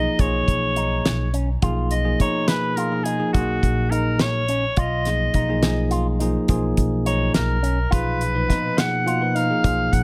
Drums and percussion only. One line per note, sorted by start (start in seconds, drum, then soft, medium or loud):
0.19 kick medium
0.19 closed hi-hat medium
0.48 kick medium
0.48 closed hi-hat medium
0.76 closed hi-hat medium
1.05 snare loud
1.05 closed hi-hat medium
1.34 closed hi-hat medium
1.62 kick loud
1.62 closed hi-hat medium
1.91 closed hi-hat medium
2.20 kick medium
2.20 closed hi-hat medium
2.48 snare loud
2.48 closed hi-hat medium
2.77 closed hi-hat medium
3.06 closed hi-hat medium
3.34 kick medium
3.34 closed hi-hat medium
3.63 kick medium
3.63 closed hi-hat medium
3.92 closed hi-hat medium
4.19 snare loud
4.19 closed hi-hat medium
4.48 closed hi-hat medium
4.77 kick medium
4.77 closed hi-hat medium
5.05 snare soft
5.05 closed hi-hat medium
5.34 kick medium
5.34 closed hi-hat medium
5.63 snare loud
5.63 closed hi-hat medium
5.91 closed hi-hat medium
6.20 closed hi-hat medium
6.48 kick medium
6.48 closed hi-hat medium
6.77 kick medium
6.77 closed hi-hat medium
7.06 closed hi-hat medium
7.34 snare loud
7.34 closed hi-hat medium
7.64 closed hi-hat medium
7.92 kick loud
7.92 closed hi-hat medium
8.21 closed hi-hat medium
8.50 kick medium
8.50 snare soft
8.50 closed hi-hat medium
8.78 snare loud
8.78 closed hi-hat medium
9.08 closed hi-hat medium
9.36 closed hi-hat medium
9.64 kick medium
9.64 closed hi-hat medium
9.93 kick medium
9.93 closed hi-hat medium